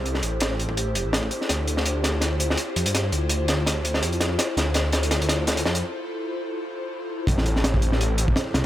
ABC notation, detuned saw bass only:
X:1
M:4/4
L:1/16
Q:"Swing 16ths" 1/4=166
K:Dm
V:1 name="Detuned saw bass" clef=bass
C,,2 A,,,8 E,,, A,,,3 z2 | D,,12 z2 F,, G,,- | G,,2 D,,8- D,,2 F,,4 | z2 D,,6- D,, D,,4- D,, F,,2 |
z16 | A,,,12 z2 C,, z |]